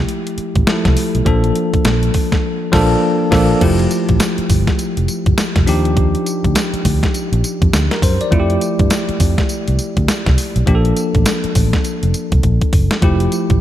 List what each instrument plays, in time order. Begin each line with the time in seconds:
Already playing: tine electric piano F3 A3 E4 G4
0.09 closed hi-hat
0.27 closed hi-hat
0.38 muted fingered electric bass stroke, closed hi-hat
0.55 fingered electric bass A1, kick, closed hi-hat
0.67 tine electric piano F3 A3 E4 A4, muted fingered electric bass stroke, snare, closed hi-hat
0.85 fingered electric bass C2, kick, snare, closed hi-hat
0.97 open hi-hat
1.15 fingered electric bass B1, closed hi-hat
1.25 fingered electric bass A#1, tine electric piano F3 A#3 D4 A4, kick, closed hi-hat
1.44 closed hi-hat
1.55 closed hi-hat
1.74 muted fingered electric bass stroke, kick, closed hi-hat
1.85 fingered electric bass A#1, snare, closed hi-hat
2.03 closed hi-hat
2.14 kick, open hi-hat
2.32 kick, snare, closed hi-hat
2.72 fingered electric bass A#1, tine electric piano F3 A#3 D4 A4, kick, snare, crash
3.31 fingered electric bass A#1, tine electric piano F3 A#3 D4 A4, kick, snare, crash
3.60 fingered electric bass F1, tine electric piano F3 A3 E4 G4, kick, closed hi-hat, crash
3.79 closed hi-hat
3.91 closed hi-hat, tambourine
4.09 fingered electric bass A1, kick, closed hi-hat
4.20 snare, closed hi-hat, tambourine
4.38 muted fingered electric bass stroke, closed hi-hat
4.50 fingered electric bass G1, kick, open hi-hat, tambourine
4.67 kick, snare, closed hi-hat
4.79 closed hi-hat, tambourine
4.97 fingered electric bass F1, closed hi-hat
5.08 closed hi-hat, tambourine
5.26 fingered electric bass G1, kick, closed hi-hat
5.38 muted fingered electric bass stroke, snare, closed hi-hat, tambourine
5.56 fingered electric bass F1, kick, snare, closed hi-hat
5.66 fingered electric bass D#2, tine electric piano F3 D4 D#4 G4, open hi-hat, tambourine
5.85 closed hi-hat
5.97 kick, closed hi-hat
6.15 closed hi-hat
6.26 closed hi-hat, tambourine
6.44 fingered electric bass D2, kick, closed hi-hat
6.55 snare, closed hi-hat, tambourine
6.74 muted fingered electric bass stroke, closed hi-hat
6.85 fingered electric bass D2, kick, open hi-hat, tambourine
7.03 kick, snare, closed hi-hat
7.14 closed hi-hat, tambourine
7.32 fingered electric bass A#1, closed hi-hat
7.44 closed hi-hat, tambourine
7.62 fingered electric bass F2, kick, closed hi-hat
7.73 fingered electric bass D2, snare, closed hi-hat, tambourine
7.91 tine electric piano A#4, snare, closed hi-hat
8.02 fingered electric bass F#2, tine electric piano C5, kick, open hi-hat, tambourine
8.21 tine electric piano D5, closed hi-hat
8.31 fingered electric bass F2, tine electric piano F3 A3 E4 F4, kick, closed hi-hat
8.40 tine electric piano G4
8.50 closed hi-hat
8.61 closed hi-hat, tambourine
8.79 fingered electric bass G2, kick, closed hi-hat
8.90 snare, closed hi-hat, tambourine
9.09 muted fingered electric bass stroke, closed hi-hat
9.20 fingered electric bass F2, kick, open hi-hat, tambourine
9.38 kick, snare, closed hi-hat
9.49 closed hi-hat, tambourine
9.68 fingered electric bass C2, closed hi-hat
9.79 closed hi-hat, tambourine
9.97 fingered electric bass D2, kick, closed hi-hat
10.08 muted fingered electric bass stroke, snare, closed hi-hat, tambourine
10.26 fingered electric bass C2, kick, snare, closed hi-hat
10.38 open hi-hat, tambourine
10.56 fingered electric bass B1, closed hi-hat
10.66 fingered electric bass A#1, tine electric piano F3 A#3 D4 G4, kick, closed hi-hat
10.75 tine electric piano A4
10.85 closed hi-hat
10.97 closed hi-hat, tambourine
11.15 fingered electric bass A1, kick, closed hi-hat
11.26 snare, closed hi-hat, tambourine
11.44 muted fingered electric bass stroke, closed hi-hat
11.55 fingered electric bass A1, kick, open hi-hat, tambourine
11.73 kick, snare, closed hi-hat
11.84 closed hi-hat, tambourine
12.03 fingered electric bass F1, closed hi-hat
12.14 closed hi-hat, tambourine
12.32 fingered electric bass C2, kick, closed hi-hat
12.43 fingered electric bass A#1, kick, closed hi-hat
12.61 kick, closed hi-hat
12.73 fingered electric bass F#1, kick, open hi-hat
12.91 snare, closed hi-hat
13.02 fingered electric bass F1, tine electric piano F3 A3 E4 G4, kick, closed hi-hat
13.20 closed hi-hat
13.32 closed hi-hat, tambourine
13.50 fingered electric bass A1, kick, closed hi-hat